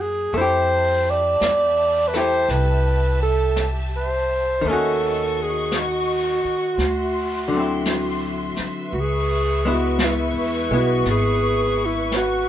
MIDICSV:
0, 0, Header, 1, 7, 480
1, 0, Start_track
1, 0, Tempo, 1077199
1, 143, Time_signature, 4, 2, 24, 8
1, 2542, Tempo, 1067616
1, 5591, End_track
2, 0, Start_track
2, 0, Title_t, "String section"
2, 0, Program_c, 0, 48
2, 144, Note_on_c, 0, 76, 52
2, 145, Note_on_c, 0, 81, 65
2, 148, Note_on_c, 0, 67, 60
2, 2047, Note_off_c, 0, 76, 0
2, 2048, Note_off_c, 0, 81, 0
2, 2049, Note_off_c, 0, 67, 0
2, 2062, Note_on_c, 0, 75, 55
2, 2063, Note_on_c, 0, 85, 64
2, 2064, Note_on_c, 0, 66, 59
2, 3011, Note_off_c, 0, 75, 0
2, 3011, Note_off_c, 0, 85, 0
2, 3025, Note_on_c, 0, 84, 66
2, 3027, Note_on_c, 0, 76, 52
2, 3964, Note_off_c, 0, 66, 0
2, 3975, Note_off_c, 0, 84, 0
2, 3984, Note_on_c, 0, 71, 58
2, 3987, Note_on_c, 0, 85, 67
2, 5591, Note_off_c, 0, 71, 0
2, 5591, Note_off_c, 0, 76, 0
2, 5591, Note_off_c, 0, 85, 0
2, 5591, End_track
3, 0, Start_track
3, 0, Title_t, "Alto saxophone"
3, 0, Program_c, 1, 65
3, 5, Note_on_c, 1, 68, 83
3, 164, Note_on_c, 1, 72, 85
3, 171, Note_off_c, 1, 68, 0
3, 491, Note_on_c, 1, 74, 79
3, 498, Note_off_c, 1, 72, 0
3, 925, Note_on_c, 1, 71, 58
3, 932, Note_off_c, 1, 74, 0
3, 971, Note_on_c, 1, 72, 76
3, 978, Note_off_c, 1, 71, 0
3, 1114, Note_on_c, 1, 71, 78
3, 1121, Note_off_c, 1, 72, 0
3, 1429, Note_off_c, 1, 71, 0
3, 1438, Note_on_c, 1, 69, 77
3, 1630, Note_off_c, 1, 69, 0
3, 1767, Note_on_c, 1, 72, 72
3, 2086, Note_on_c, 1, 69, 94
3, 2092, Note_off_c, 1, 72, 0
3, 2418, Note_on_c, 1, 68, 75
3, 2424, Note_off_c, 1, 69, 0
3, 2577, Note_on_c, 1, 66, 70
3, 2583, Note_off_c, 1, 68, 0
3, 3518, Note_off_c, 1, 66, 0
3, 3989, Note_on_c, 1, 66, 56
3, 4025, Note_on_c, 1, 68, 86
3, 4031, Note_off_c, 1, 66, 0
3, 4351, Note_on_c, 1, 66, 69
3, 4357, Note_off_c, 1, 68, 0
3, 4498, Note_on_c, 1, 64, 78
3, 4505, Note_off_c, 1, 66, 0
3, 4820, Note_on_c, 1, 66, 79
3, 4827, Note_off_c, 1, 64, 0
3, 4958, Note_off_c, 1, 66, 0
3, 4971, Note_on_c, 1, 68, 81
3, 5309, Note_on_c, 1, 64, 70
3, 5315, Note_off_c, 1, 68, 0
3, 5442, Note_off_c, 1, 64, 0
3, 5445, Note_on_c, 1, 66, 78
3, 5591, Note_off_c, 1, 66, 0
3, 5591, End_track
4, 0, Start_track
4, 0, Title_t, "Hollow-body jazz guitar"
4, 0, Program_c, 2, 26
4, 0, Note_on_c, 2, 54, 38
4, 0, Note_on_c, 2, 58, 39
4, 0, Note_on_c, 2, 64, 39
4, 0, Note_on_c, 2, 68, 47
4, 139, Note_off_c, 2, 54, 0
4, 144, Note_off_c, 2, 58, 0
4, 146, Note_off_c, 2, 64, 0
4, 149, Note_off_c, 2, 68, 0
4, 151, Note_on_c, 2, 57, 49
4, 167, Note_on_c, 2, 64, 46
4, 184, Note_on_c, 2, 67, 59
4, 948, Note_off_c, 2, 57, 0
4, 953, Note_on_c, 2, 57, 37
4, 957, Note_off_c, 2, 64, 0
4, 961, Note_off_c, 2, 67, 0
4, 962, Note_on_c, 2, 64, 38
4, 966, Note_on_c, 2, 67, 38
4, 2056, Note_on_c, 2, 51, 44
4, 2068, Note_off_c, 2, 57, 0
4, 2073, Note_off_c, 2, 64, 0
4, 2075, Note_off_c, 2, 67, 0
4, 2077, Note_on_c, 2, 57, 44
4, 2092, Note_on_c, 2, 61, 46
4, 2105, Note_on_c, 2, 66, 41
4, 3017, Note_off_c, 2, 51, 0
4, 3028, Note_off_c, 2, 57, 0
4, 3035, Note_off_c, 2, 61, 0
4, 3042, Note_off_c, 2, 66, 0
4, 3341, Note_on_c, 2, 50, 39
4, 3359, Note_on_c, 2, 54, 37
4, 3379, Note_on_c, 2, 60, 42
4, 3391, Note_on_c, 2, 64, 47
4, 3978, Note_off_c, 2, 50, 0
4, 3987, Note_off_c, 2, 54, 0
4, 3997, Note_off_c, 2, 60, 0
4, 4004, Note_off_c, 2, 64, 0
4, 4317, Note_on_c, 2, 56, 49
4, 4323, Note_on_c, 2, 59, 50
4, 4326, Note_on_c, 2, 64, 50
4, 4787, Note_off_c, 2, 56, 0
4, 4793, Note_on_c, 2, 56, 37
4, 4796, Note_off_c, 2, 59, 0
4, 4801, Note_on_c, 2, 59, 38
4, 4802, Note_off_c, 2, 64, 0
4, 4807, Note_on_c, 2, 64, 39
4, 5591, Note_off_c, 2, 56, 0
4, 5591, Note_off_c, 2, 59, 0
4, 5591, Note_off_c, 2, 64, 0
4, 5591, End_track
5, 0, Start_track
5, 0, Title_t, "Upright bass"
5, 0, Program_c, 3, 32
5, 0, Note_on_c, 3, 42, 73
5, 126, Note_off_c, 3, 42, 0
5, 147, Note_on_c, 3, 41, 76
5, 609, Note_off_c, 3, 41, 0
5, 629, Note_on_c, 3, 40, 68
5, 1090, Note_off_c, 3, 40, 0
5, 1108, Note_on_c, 3, 36, 70
5, 2048, Note_off_c, 3, 36, 0
5, 2067, Note_on_c, 3, 39, 72
5, 2854, Note_off_c, 3, 39, 0
5, 3023, Note_on_c, 3, 38, 68
5, 3814, Note_off_c, 3, 38, 0
5, 3990, Note_on_c, 3, 37, 75
5, 4609, Note_off_c, 3, 37, 0
5, 4620, Note_on_c, 3, 40, 55
5, 4771, Note_off_c, 3, 40, 0
5, 4785, Note_on_c, 3, 35, 68
5, 4933, Note_off_c, 3, 35, 0
5, 4941, Note_on_c, 3, 32, 69
5, 5591, Note_off_c, 3, 32, 0
5, 5591, End_track
6, 0, Start_track
6, 0, Title_t, "Muted upright bass strokes"
6, 2874, Note_on_c, 9, 29, 36
6, 2919, Note_off_c, 9, 29, 0
6, 3838, Note_on_c, 9, 29, 33
6, 3883, Note_off_c, 9, 29, 0
6, 5591, End_track
7, 0, Start_track
7, 0, Title_t, "Drums"
7, 154, Note_on_c, 9, 25, 32
7, 630, Note_off_c, 9, 25, 0
7, 630, Note_on_c, 9, 25, 30
7, 630, Note_on_c, 9, 38, 39
7, 630, Note_on_c, 9, 44, 49
7, 675, Note_off_c, 9, 38, 0
7, 675, Note_off_c, 9, 44, 0
7, 952, Note_on_c, 9, 38, 27
7, 996, Note_off_c, 9, 38, 0
7, 1110, Note_off_c, 9, 25, 0
7, 1110, Note_on_c, 9, 25, 33
7, 1110, Note_on_c, 9, 38, 25
7, 1154, Note_off_c, 9, 38, 0
7, 1587, Note_off_c, 9, 25, 0
7, 1587, Note_on_c, 9, 25, 29
7, 1587, Note_on_c, 9, 38, 37
7, 1587, Note_on_c, 9, 44, 42
7, 1632, Note_off_c, 9, 38, 0
7, 1632, Note_off_c, 9, 44, 0
7, 2068, Note_off_c, 9, 25, 0
7, 2068, Note_on_c, 9, 25, 29
7, 2548, Note_off_c, 9, 25, 0
7, 2548, Note_on_c, 9, 25, 33
7, 2548, Note_on_c, 9, 38, 38
7, 2548, Note_on_c, 9, 44, 55
7, 2592, Note_off_c, 9, 38, 0
7, 2592, Note_off_c, 9, 44, 0
7, 3028, Note_off_c, 9, 25, 0
7, 3028, Note_on_c, 9, 25, 34
7, 3028, Note_on_c, 9, 38, 26
7, 3073, Note_off_c, 9, 38, 0
7, 3508, Note_off_c, 9, 25, 0
7, 3508, Note_on_c, 9, 25, 33
7, 3508, Note_on_c, 9, 38, 35
7, 3508, Note_on_c, 9, 44, 52
7, 3553, Note_off_c, 9, 38, 0
7, 3553, Note_off_c, 9, 44, 0
7, 3826, Note_on_c, 9, 38, 23
7, 3871, Note_off_c, 9, 38, 0
7, 3986, Note_off_c, 9, 25, 0
7, 3986, Note_on_c, 9, 25, 36
7, 4467, Note_off_c, 9, 25, 0
7, 4467, Note_on_c, 9, 25, 34
7, 4467, Note_on_c, 9, 38, 45
7, 4467, Note_on_c, 9, 44, 50
7, 4512, Note_off_c, 9, 38, 0
7, 4512, Note_off_c, 9, 44, 0
7, 4946, Note_off_c, 9, 25, 0
7, 4946, Note_on_c, 9, 25, 28
7, 4946, Note_on_c, 9, 38, 26
7, 4991, Note_off_c, 9, 38, 0
7, 5425, Note_off_c, 9, 25, 0
7, 5425, Note_on_c, 9, 25, 33
7, 5425, Note_on_c, 9, 38, 36
7, 5425, Note_on_c, 9, 44, 57
7, 5470, Note_off_c, 9, 38, 0
7, 5470, Note_off_c, 9, 44, 0
7, 5591, Note_off_c, 9, 25, 0
7, 5591, End_track
0, 0, End_of_file